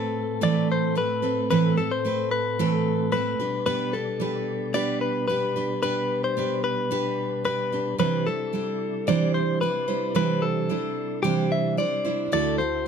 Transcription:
Already playing: A2 A3 C4 A4 B4
0.41 A2 E3 A3 C4 A4 B4 D5
0.72 C5
0.95 A3 C4 A4 B4
1.22 A3 C4 A4 B4
1.50 A2 E3 A3 C4 A4 B4
1.77 A3 C4 A4 B4
1.91 C5
2.05 A3 C4 A4 B4
2.31 B4
2.59 A2 E3 A3 C4 A4 B4
3.12 A3 C4 A4 B4
3.38 B2 G3 D4 G4 B4 D5
3.66 B3 D4 G4 B4
3.93 D4 G4 A4 B4
4.20 B3 D4 G4 B4
4.74 B3 D4 G4 B4 D5
5.01 B4
5.28 B3 D4 G4 B4
5.56 D4 G4 B4
5.83 B3 D4 G4 B4
6.24 C5
6.37 B3 D4 G4 B4
6.64 B4
6.91 B3 D4 G4 B4
7.44 B3 D4 G4 B4
7.72 D4 G4 B4
7.98 C3 E3 G3 D4 E4 B4 C5 D5
8.27 G3 D4 E4 A4 C5
8.53 G3 D4 E4 C5
9.07 C3 E3 G3 D4 E4 C5 D5
9.34 C5
9.61 G3 D4 E4 B4 C5
9.88 G3 D4 E4 C5
10.15 C3 E3 G3 D4 E4 B4 C5
10.42 A4
10.69 G3 D4 E4 C5
11.23 C3 E3 G3 D4 E4 G4 C5
11.52 E5
11.77 G3 D4 E4 C5 D5
12.05 G3 D4 E4 C5
12.32 D2 D3 A3 E4 F#4 A4 D5 E5
12.58 E4 F#4 A4 C5

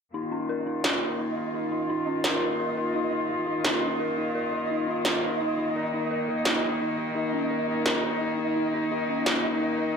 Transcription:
0.14 D#3 A#3 D#4 F4 D#5
0.32 C#4
0.49 A#4
0.67 D#4
0.84 A#4, snare
1.02 A#4
1.19 D#4
1.37 D#4
1.54 D#4
1.72 D#4
1.89 D#4
2.07 C#4
2.24 A#4, snare
2.42 D#4
2.60 A#4
2.77 A#4
2.94 D#4
3.12 D#4
3.29 D#4
3.47 D#4
3.65 D#4, snare
3.82 C#4
3.99 A#4
4.18 D#4
4.35 A#4
4.52 A#4
4.70 D#4
4.88 D#4
5.05 snare
5.23 D#4
5.41 D#4
5.58 D#4
5.75 D#4 A#4
5.93 D#4
6.11 A#4
6.28 A#4
6.45 D#4, snare
6.81 D#4
7.15 D#4
7.33 C#4
7.50 A#4
7.69 D#4
7.86 A#4, snare
8.04 A#4
8.21 D#4
8.39 D#4
8.56 D#4
8.74 D#4
8.91 D#4
9.09 C#4
9.26 A#4, snare
9.44 D#4
9.61 A#4
9.79 A#4

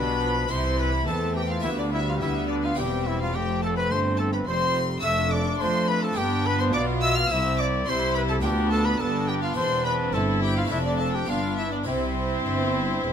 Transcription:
Already playing: B1 B2 G3 D4 G4 B4 B5
0.22 F3
0.48 C2 C3 E3 E4 G4 C5 C6
0.78 B4 B5
1.07 E2 E3 A3 C4 A4 A5
1.35 G4 G5
1.50 F4 F5
1.60 B3 F4 G4 E5
1.64 D2 G3 B3 E4
1.78 D4 D5
1.92 E4 E5
2.08 F4 F5
2.21 D2 D3 B3 E4 E5
2.48 D4 D5
2.63 F4 F5
2.74 C4 E4 G4 G5
2.78 E1 E2 G3 C4
3.05 E4 E5
3.20 F4 F5
3.34 F1 F2 A3 G4 G5
3.62 A4 A5
3.77 B4 B5
3.90 G1 G2 C5 C6
4.17 A4 A5
4.33 B4 B5
4.46 F1 F2 G3 C4 C5 C6
5.00 A3 D4 A4 E6
5.04 F1 F2 A3 D4 E5
5.30 D5 D6
5.59 F2 F3 A3 C5 C6
5.88 B4 B5
6.02 A4 A5
6.12 B3 D4 G4 G5
6.17 G1 G2 B3 D4 G4
6.44 B4 B5
6.59 C5 C6
6.73 B1 B2 F4 D5 D6
7.01 E5 E6
7.16 F5 F6
7.28 C2 C4 E4 G4 E5 E6
7.57 D5 D6
7.86 C2 C3 G3 E4 C5 C6
8.14 B4 B5
8.28 A4 A5
8.41 D2 B3 D4 F4 G5
8.45 B3 G4
8.71 A4 A5
8.85 B4 B5
8.98 G1 G2 D4 A4 A5
9.28 G4 G5
9.42 F4 F5
9.53 E2 C4 E4 C5 C6
9.57 E1 E2 C4
9.85 B4 B5
10.13 G1 G2 E4 A4 A5
10.42 G4 G5
10.57 F4 F5
10.65 A3 C4 D4
10.70 F1 F2 C4 D4 E4 E5
10.85 D4 D5
10.98 A4 A5
11.13 G4 G5
11.25 G1 G2 B3 D4 F5
11.30 F4
11.56 E4 E5
11.72 D4 D5
11.84 C2 C3 C4 E4 C5
12.46 G1 G2
13.04 E1 E2

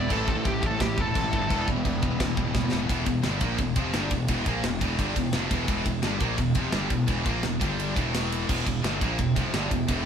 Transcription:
Already playing: E4 D5 E5 E6
0.01 E2
0.08 A1 A2 E3 A3 C4 E4 A4 C5 A5, kick, china
0.26 A2 E3 A4, kick
0.35 A2 E3
0.44 A1 A2 E3 G4, kick, china
0.61 A1 A2 E3, kick
0.66 A4
0.70 A2 E3
0.80 A1 A2 E3 G4, kick, snare, china
0.98 E1 A2 E3 A4, kick
1.07 A2 E3
1.15 A1 A2 E3, kick, china
1.24 A2 E3
1.31 G1 A2 E3 A3 C4 E4, kick
1.42 A2 E3
1.50 E1 E2 B2 E3 G3 B3 E4 B4 G5, kick, china
1.68 E1 E2 B2, kick
1.76 E2 B2
1.85 E1 E2 B2, kick, china
2.02 E1 E2 B2, kick
2.10 E2 B2
2.20 E1 E2 B2, kick, snare, china
2.37 E1 E2 B2, kick
2.45 E2 B2
2.53 E1 E2 B2, kick, snare
2.63 E2 B2
2.71 E1 E2 B2 E3 G3 B3 E4, snare
2.79 E2 B2
2.86 E1 E2 B2 E3, kick, ride
2.90 E2 B2
3.05 E1 E2 B2, kick, ride
3.22 G1 G2 D3 G3, snare, ride
3.39 A#1 A#2 F3 A#3, kick, ride
3.58 E1 E2 B2, kick, ride
3.76 F1 F2 C3 F3, kick, ride
3.93 G1 G2 D3 G3, snare, ride
4.11 E1 E2 B2, kick, ride
4.28 E1 E2 B2 E3, kick, ride
4.46 A#1 A#2 F3 A#3, kick, ride
4.63 E1 E2 B2, snare, ride
4.79 E1 E2 B2 E3, kick, ride
4.98 G1 G2 D3 G3, kick, ride
5.16 E1 E2 B2, kick, ride
5.32 F1 F2 C3 F3, snare, ride
5.50 E1 E2 B2 E3, kick, ride
5.66 E1 E2 B2 E3, kick, ride
5.84 E1 E2 B2, kick, ride
6.02 G1 G2 D3 G3, snare, ride
6.18 A#1 A#2 F3 A#3, kick, ride
6.37 E1 E2 B2, kick, ride
6.55 F1 F2 C3 F3, kick, ride
6.72 G1 G2 D3 G3, snare, ride
6.90 E1 E2 B2, kick, ride
7.07 E1 E2 B2 E3, kick, ride
7.25 A#1 A#2 F3 A#3, kick, ride
7.43 E1 E2 B2, snare, ride
7.60 G1 G2 D3 G3, kick, ride
7.80 ride
7.95 E1 E2 B2 E3, kick, ride
8.15 snare, ride
8.32 ride
8.48 E1 E2 B2 E3 B3 G4 E5 G5, kick, crash
8.66 E1 E2 B2, kick, ride
8.84 G1 G2 D3 G3, snare, ride
9.01 A#1 A#2 F3 A#3, kick, ride
9.18 E1 E2 B2, kick, ride
9.36 F1 F2 C3 F3, kick, ride
9.52 G1 G2 D3 G3, snare, ride
9.70 E1 E2 B2, kick, ride
9.88 E1 E2 B2 E3, kick, ride

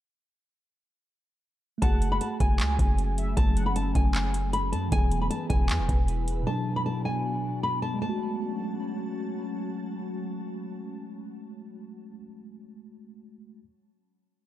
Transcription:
1.78 A3 F#4 A5
1.82 F#1 F#3 A3 C#4 G#4 F#5, kick, closed hi-hat
2.02 closed hi-hat
2.12 B5
2.21 A5, closed hi-hat
2.40 F#1 G#5, kick, closed hi-hat
2.60 C#2, clap, closed hi-hat
2.79 F#1, kick, closed hi-hat
2.98 closed hi-hat
3.18 E5, closed hi-hat
3.37 F#1 A5, kick, closed hi-hat
3.57 F#5, closed hi-hat
3.66 B5
3.76 A5, closed hi-hat
3.95 F#1 G#5, kick, closed hi-hat
4.15 clap, closed hi-hat
4.34 closed hi-hat
4.53 B5, closed hi-hat
4.72 F#2 A5, closed hi-hat
4.88 E1 E3 B3 E4 B4 G#5, kick, closed hi-hat
4.96 G#4
5.11 closed hi-hat
5.21 B5
5.30 A5, closed hi-hat
5.50 E1 G#5, kick, closed hi-hat
5.69 E2, clap, closed hi-hat
5.79 E1
5.89 E1, kick, closed hi-hat
6.08 closed hi-hat
6.28 closed hi-hat
6.43 B2 F#3 B3 D4 F#4
6.47 D4 A5
6.76 B5
6.86 A5
7.05 G#5
7.63 B5
7.82 A5
7.94 G#3
8.02 F#3 A3 C#4 F#4 A5
8.09 F#4

